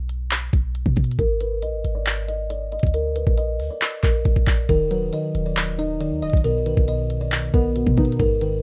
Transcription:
Already playing: 808-style bass B1
0.09 closed hi-hat
0.31 clap, closed hi-hat
0.53 808-style bass B1, kick, closed hi-hat
0.75 closed hi-hat
0.86 808-style bass B2, kick
0.96 808-style bass B2, kick, closed hi-hat, open hi-hat
1.04 closed hi-hat
1.11 closed hi-hat
1.19 808-style bass G#1, kalimba A#4, kick, closed hi-hat
1.41 kalimba B4, closed hi-hat
1.62 808-style bass A#1, kalimba D#5, closed hi-hat
1.74 808-style bass G#1
1.85 808-style bass G#1, closed hi-hat
1.95 kalimba D5
2.06 clap, closed hi-hat
2.28 kalimba D#5, closed hi-hat
2.50 kalimba D5, closed hi-hat
2.72 kalimba D#5, closed hi-hat
2.79 808-style bass D2, kick, closed hi-hat
2.87 closed hi-hat
2.94 kalimba A#4, closed hi-hat
3.16 kalimba B4, closed hi-hat
3.27 808-style bass A#1, kick
3.38 kalimba D#5, closed hi-hat
3.60 808-style bass D2, open hi-hat
3.70 kalimba D5
3.82 clap, closed hi-hat
4.03 808-style bass A#1, kalimba A#4, kick, clap, closed hi-hat
4.25 808-style bass A#1, kick, closed hi-hat
4.36 808-style bass A#1, kick
4.47 808-style bass A#1, kalimba D5, kick, clap, open hi-hat
4.69 808-style bass D#1, synth keys D#3, kalimba A#4, kick, closed hi-hat
4.91 synth keys F#3, kalimba B4, closed hi-hat
5.13 synth keys D#3, kalimba D#5, closed hi-hat
5.35 808-style bass D#1, closed hi-hat
5.46 kalimba D5
5.57 clap, closed hi-hat
5.78 synth keys D#4, kalimba D#5, closed hi-hat
6.00 synth keys D#3, kalimba D5, closed hi-hat
6.11 808-style bass D#2
6.22 808-style bass D#1, synth keys D#5, kalimba D#5, closed hi-hat
6.30 808-style bass B1, kick, closed hi-hat
6.37 closed hi-hat
6.44 synth keys B2, kalimba A#4, closed hi-hat
6.66 synth keys D#3, kalimba B4, closed hi-hat
6.77 808-style bass B1, kick
6.88 synth keys B2, kalimba D#5, closed hi-hat
7.10 closed hi-hat
7.21 kalimba D5
7.32 clap, closed hi-hat
7.54 808-style bass B1, synth keys B3, kalimba A#4, kick, closed hi-hat
7.76 synth keys B2, closed hi-hat
7.87 808-style bass B2, kick
7.97 808-style bass B2, synth keys D#4, kalimba B4, kick, closed hi-hat, open hi-hat
8.05 closed hi-hat
8.12 closed hi-hat
8.20 808-style bass G#1, synth keys G#2, kalimba A#4, kick, closed hi-hat
8.41 synth keys D#3, kalimba B4, closed hi-hat

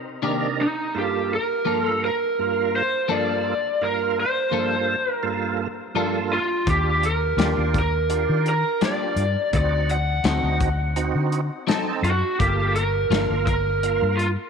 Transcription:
0.22 tonewheel organ C3 D4 D#4 A#4, clean electric guitar D#3 A#3 D4 G4
0.61 lead electric guitar D#4
0.94 tonewheel organ G2 A#3 F4 A4, lead electric guitar G4
1.34 lead electric guitar A#4
1.65 tonewheel organ G2 A#3 F4 A#4, clean electric guitar F3 A#3 D4 A4
1.84 lead electric guitar A4
2.05 lead electric guitar A#4
2.39 tonewheel organ G2 A#3 F4 A#4
2.76 lead electric guitar C5
3.08 tonewheel organ G2 A#3 F4 A4, clean electric guitar F3 A#3 D4 A4, lead electric guitar D5
3.81 tonewheel organ G2 A#3 F4 A#4, lead electric guitar A#4
4.20 lead electric guitar C5
4.51 tonewheel organ G2 A#3 F4 A4, clean electric guitar F3 A#3 D4 A4
5.12 lead electric guitar A#4
5.23 tonewheel organ G2 A#3 F4 A4
5.95 tonewheel organ G2 A#3 F4 A4, clean electric guitar F3 A#3 D4 A4
6.33 lead electric guitar F4
6.66 fingered electric bass D#2, tonewheel organ D4 F4 G4, lead electric guitar G4, kick, closed hi-hat
7.03 lead electric guitar A#4, closed hi-hat
7.37 fingered electric bass D#2, clean electric guitar G3 A#3 D4 G4, tonewheel organ D4 F4 G4, snare, closed hi-hat
7.58 fingered electric bass D#2
7.74 kick, closed hi-hat
7.79 lead electric guitar A#4
8.09 tonewheel organ D4 F4 G4, closed hi-hat
8.29 fingered electric bass D#3
8.46 lead electric guitar A#4, closed hi-hat
8.81 clean electric guitar G3 A#3 D4 G4, tonewheel organ D4 F4 G4, lead electric guitar D5, snare, closed hi-hat
9.16 fingered electric bass G2, closed hi-hat
9.53 fingered electric bass D2, tonewheel organ C4 D#4 F#4, lead electric guitar D5, kick, closed hi-hat
9.89 lead electric guitar F#5, closed hi-hat
10.24 fingered electric bass D2, clean electric guitar F#3 C4 D#4 A4, tonewheel organ C4 D#4 F#4, snare, closed hi-hat
10.43 fingered electric bass D2
10.60 kick, closed hi-hat
10.96 tonewheel organ C4 D#4 F#4, closed hi-hat
11.15 fingered electric bass D3
11.32 closed hi-hat
11.67 clean electric guitar F#3 C4 D#4 A4, tonewheel organ C4 D#4 A4, snare, closed hi-hat
12.03 fingered electric bass F#2, lead electric guitar F#4, closed hi-hat
12.39 fingered electric bass G1, tonewheel organ A#3 F4 A4, lead electric guitar G4, kick, closed hi-hat
12.75 lead electric guitar A#4, closed hi-hat
13.10 fingered electric bass G1, clean electric guitar F3 A#3 D4 A4, tonewheel organ A#3 F4 A#4, snare, closed hi-hat
13.30 fingered electric bass G1
13.46 lead electric guitar A#4, kick, closed hi-hat
13.83 tonewheel organ A#3 F4 A#4, closed hi-hat
14.02 fingered electric bass G2
14.17 lead electric guitar F4, closed hi-hat

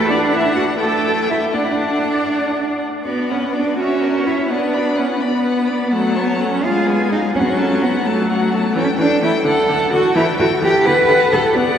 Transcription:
Already playing: viola A3, cello A4
0.09 cello D4, viola D4, violin D5 F#5
0.33 cello E4, violin E5
0.56 cello F#4, violin F#5
0.79 viola A3, cello A4, violin G5 A5
1.28 cello E4, violin E5
1.53 viola D4, cello D4, violin D5 F#5
1.64 cello E4
1.71 cello D4
3.05 viola B3, cello B3, violin F#4 D5
3.30 cello C#4, violin B4 F#5
3.52 cello D4, violin F#4 D5
3.77 viola C#4, cello F#4, violin C#5 E5
4.02 violin A#4 C#5
4.25 cello E4, violin C#5 E5
4.49 viola B3, cello D4, violin B4 F#5
4.74 violin D5 B5
4.97 cello C#4, violin B4 F#5
5.20 viola B3, cello B3, violin D5 B5
5.43 violin B4 F#5
5.67 violin D5 B5
5.92 viola F#3, cello A3, violin A4 F#5
6.16 cello B3, violin C#5 A5
6.40 cello C#4, violin A4 F#5
6.63 viola G#3, cello F4, violin G#4 F5
6.87 violin B4 G#5
7.10 cello D#4, violin G#4 F5
7.35 viola F#3, cello C#4, violin F#4 F#5
7.43 cello B3
7.50 cello C#4
7.58 violin A4 A5
7.82 cello B3, violin F#4 F#5
8.05 viola F#3, cello A3, violin A4 A5
8.30 violin F#4 F#5
8.52 violin A4 A5
8.75 viola E3, cello C#4, violin A4 G5
8.99 viola E3, cello D4, violin A4 G5
9.22 viola E3, cello E4, violin A4 G5
9.44 viola D3, cello A4, violin A4 F#5
9.69 viola D3, violin A4 F#5
9.92 viola D3, cello F#4, violin A4 F#5
10.15 viola E3, cello E4, violin A4 G5
10.38 viola E3, cello F#4, violin A4 G5
10.62 viola E3, cello G4, violin A4 G5
10.84 viola D3, violin A4 F#5, cello B4
11.06 viola D3, violin A4 F#5
11.31 viola D3, violin A4 F#5, cello A4
11.54 viola B3, cello B3, violin D5 F#5

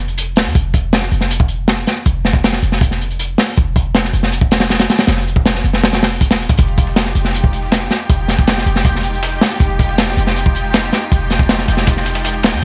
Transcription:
Already playing: 808-style bass F1
0.08 closed hi-hat
0.18 closed hi-hat
0.36 808-style bass D#1, snare, open hi-hat
0.46 808-style bass F2
0.55 808-style bass F1, kick, closed hi-hat
0.74 kick, closed hi-hat
0.93 snare, closed hi-hat
1.02 snare
1.11 808-style bass F1, closed hi-hat
1.21 snare
1.31 closed hi-hat
1.40 kick
1.48 closed hi-hat
1.68 snare, closed hi-hat
1.87 snare, closed hi-hat
2.06 808-style bass F1, kick, closed hi-hat
2.25 snare, closed hi-hat
2.33 kick
2.44 snare, closed hi-hat
2.53 snare
2.62 808-style bass F1, closed hi-hat
2.72 snare
2.81 kick, closed hi-hat
2.91 snare
3.01 closed hi-hat
3.11 closed hi-hat
3.19 closed hi-hat
3.38 snare, open hi-hat
3.56 808-style bass F1, kick, closed hi-hat
3.76 kick, closed hi-hat
3.95 snare, closed hi-hat
4.04 snare
4.13 808-style bass F1, closed hi-hat
4.23 snare
4.32 closed hi-hat
4.41 kick
4.51 snare, closed hi-hat
4.60 snare, closed hi-hat
4.70 snare, closed hi-hat
4.79 snare, closed hi-hat
4.89 snare, closed hi-hat
4.98 snare, closed hi-hat
5.07 808-style bass F1, snare, closed hi-hat
5.17 snare
5.28 closed hi-hat
5.36 kick
5.46 snare, closed hi-hat
5.55 snare
5.64 808-style bass F1, closed hi-hat
5.73 snare
5.84 snare, closed hi-hat
5.93 snare, closed hi-hat
6.03 snare, open hi-hat
6.21 kick, closed hi-hat
6.31 snare, open hi-hat
6.40 808-style bass D#1
6.49 808-style bass F2, kick, closed hi-hat
6.57 808-style bass F1, string section G#3 D#4 F4 G4, synth texture G5, kick, closed hi-hat
6.68 closed hi-hat
6.78 kick, closed hi-hat
6.87 snare
6.96 snare, closed hi-hat
7.06 snare
7.15 808-style bass F1, closed hi-hat
7.25 snare
7.34 closed hi-hat
7.44 kick
7.53 closed hi-hat
7.62 snare
7.72 snare, closed hi-hat
7.91 snare, closed hi-hat
8.09 808-style bass F1, kick, closed hi-hat
8.28 snare, closed hi-hat
8.39 kick
8.47 snare, closed hi-hat, open hi-hat
8.57 snare, closed hi-hat
8.66 808-style bass F1, closed hi-hat
8.76 snare, closed hi-hat
8.85 kick, closed hi-hat
8.96 snare
9.03 closed hi-hat
9.14 closed hi-hat
9.23 snare, closed hi-hat
9.32 snare
9.41 snare, closed hi-hat, open hi-hat
9.60 808-style bass F1, kick, closed hi-hat
9.70 closed hi-hat
9.79 kick, closed hi-hat
9.89 snare
9.98 snare, closed hi-hat
10.08 snare
10.17 808-style bass F1, closed hi-hat
10.27 snare
10.36 closed hi-hat
10.46 kick
10.55 closed hi-hat
10.64 snare
10.74 snare, closed hi-hat
10.93 snare, closed hi-hat
11.11 808-style bass F1, kick, closed hi-hat
11.30 snare, closed hi-hat
11.39 kick
11.49 snare, closed hi-hat, open hi-hat
11.58 snare, closed hi-hat
11.68 808-style bass F1, snare, closed hi-hat
11.77 snare, closed hi-hat
11.87 kick, snare, closed hi-hat
11.97 snare
12.06 snare, closed hi-hat
12.15 snare, closed hi-hat
12.25 snare, closed hi-hat
12.34 snare
12.43 808-style bass D#1, snare, closed hi-hat, open hi-hat
12.53 808-style bass F2

